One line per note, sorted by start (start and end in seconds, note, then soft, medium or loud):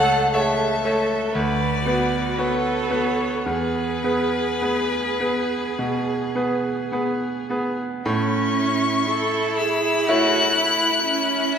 0.00 1.38 C#2 medium
0.00 0.30 A3 medium
0.00 0.30 A4 medium
0.00 0.31 A4 medium
0.00 0.33 A4 loud
0.00 0.31 C#5 medium
0.00 0.35 F#5 loud
0.33 0.81 A3 medium
0.33 0.84 G#4 medium
0.33 1.33 A4 medium
0.33 0.81 A4 medium
0.33 0.81 C#5 medium
0.33 1.36 E5 medium
0.84 1.31 A3 medium
0.84 1.35 A4 medium
0.84 1.32 A4 medium
0.84 1.32 C#5 medium
1.34 1.85 D2 medium
1.34 1.84 B4 medium
1.34 3.42 B4 medium
1.34 2.40 D5 loud
1.85 2.34 B3 medium
1.85 2.39 F#4 medium
1.85 2.34 F#4 medium
1.85 2.35 B4 medium
2.37 2.87 B3 medium
2.37 2.87 F#4 medium
2.37 3.47 A4 medium
2.37 2.88 B4 medium
2.37 3.47 C#5 medium
2.90 3.42 B3 medium
2.90 3.42 F#4 medium
2.90 3.42 B4 medium
3.45 4.02 E2 medium
3.45 7.49 G#4 medium
3.45 7.79 G#4 medium
3.45 6.91 B4 loud
4.04 4.58 B3 medium
4.04 4.58 G#4 soft
4.04 4.58 B4 medium
4.62 5.16 B3 soft
4.62 5.16 G#4 soft
4.62 5.16 B4 medium
5.20 5.74 B3 soft
5.20 5.74 G#4 soft
5.20 5.75 B4 medium
5.79 6.34 B2 medium
6.35 6.88 B3 soft
6.35 6.88 G#4 soft
6.35 6.88 B4 soft
6.92 7.46 B3 soft
6.92 7.46 G#4 soft
6.92 7.46 B4 medium
7.50 8.01 B3 soft
7.50 8.01 G#4 medium
7.50 8.02 B4 medium
8.05 11.58 A2 medium
8.05 9.10 C#4 medium
8.05 11.58 E4 loud
8.05 9.53 C#6 loud
9.08 9.59 A4 medium
9.57 10.09 G#4 medium
9.57 10.10 E6 loud
10.08 11.58 A3 medium
10.08 11.58 E4 medium
10.08 10.57 F#4 loud
10.08 11.58 C#5 medium
10.08 11.56 F#6 loud
10.58 11.06 E4 medium
11.07 11.58 C#4 loud